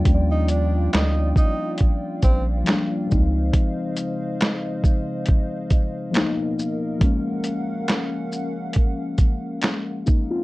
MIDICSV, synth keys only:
0, 0, Header, 1, 2, 480
1, 0, Start_track
1, 0, Tempo, 869565
1, 29, Time_signature, 4, 2, 24, 8
1, 5762, End_track
2, 0, Start_track
2, 0, Title_t, "Synth keys"
2, 0, Program_c, 0, 88
2, 0, Control_c, 0, 64, 127
2, 0, Note_on_c, 0, 53, 84
2, 0, Note_on_c, 0, 55, 82
2, 0, Note_on_c, 0, 58, 79
2, 0, Note_on_c, 0, 62, 94
2, 12, Note_off_c, 0, 53, 0
2, 12, Note_on_c, 0, 53, 71
2, 25, Note_off_c, 0, 55, 0
2, 25, Note_on_c, 0, 55, 59
2, 33, Note_off_c, 0, 58, 0
2, 33, Note_on_c, 0, 58, 64
2, 44, Note_on_c, 0, 61, 66
2, 78, Note_off_c, 0, 61, 0
2, 80, Note_on_c, 0, 74, 74
2, 740, Note_off_c, 0, 53, 0
2, 746, Note_off_c, 0, 55, 0
2, 751, Note_off_c, 0, 58, 0
2, 774, Note_off_c, 0, 74, 0
2, 1457, Note_on_c, 0, 53, 91
2, 1468, Note_on_c, 0, 55, 76
2, 1478, Note_on_c, 0, 58, 71
2, 1488, Note_off_c, 0, 62, 0
2, 1488, Note_on_c, 0, 62, 94
2, 1687, Note_off_c, 0, 53, 0
2, 1694, Note_on_c, 0, 53, 77
2, 1704, Note_on_c, 0, 56, 74
2, 1709, Note_off_c, 0, 55, 0
2, 1713, Note_on_c, 0, 60, 74
2, 1714, Note_off_c, 0, 58, 0
2, 1717, Control_c, 0, 64, 0
2, 1719, Note_off_c, 0, 62, 0
2, 1723, Note_on_c, 0, 63, 85
2, 1821, Control_c, 0, 64, 127
2, 2477, Note_off_c, 0, 53, 0
2, 2482, Note_off_c, 0, 56, 0
2, 2486, Note_off_c, 0, 60, 0
2, 2491, Note_off_c, 0, 63, 0
2, 3374, Note_on_c, 0, 53, 79
2, 3386, Note_on_c, 0, 58, 73
2, 3396, Control_c, 0, 64, 0
2, 3396, Note_on_c, 0, 59, 74
2, 3405, Note_on_c, 0, 63, 100
2, 3485, Control_c, 0, 64, 127
2, 3759, Note_off_c, 0, 53, 0
2, 3765, Note_off_c, 0, 58, 0
2, 3769, Note_off_c, 0, 59, 0
2, 3774, Note_off_c, 0, 63, 0
2, 3856, Note_on_c, 0, 53, 73
2, 3866, Note_on_c, 0, 56, 79
2, 3876, Note_on_c, 0, 58, 75
2, 3877, Control_c, 0, 64, 0
2, 3887, Note_on_c, 0, 61, 102
2, 3977, Control_c, 0, 64, 127
2, 4582, Note_off_c, 0, 53, 0
2, 4587, Note_off_c, 0, 56, 0
2, 4592, Note_off_c, 0, 58, 0
2, 4597, Note_off_c, 0, 61, 0
2, 5313, Note_on_c, 0, 61, 51
2, 5317, Note_on_c, 0, 56, 53
2, 5539, Note_off_c, 0, 61, 0
2, 5541, Note_off_c, 0, 56, 0
2, 5554, Note_on_c, 0, 63, 64
2, 5558, Note_on_c, 0, 58, 58
2, 5682, Note_off_c, 0, 63, 0
2, 5684, Note_off_c, 0, 58, 0
2, 5688, Note_on_c, 0, 65, 62
2, 5690, Note_on_c, 0, 60, 59
2, 5762, Note_off_c, 0, 60, 0
2, 5762, Note_off_c, 0, 65, 0
2, 5762, End_track
0, 0, End_of_file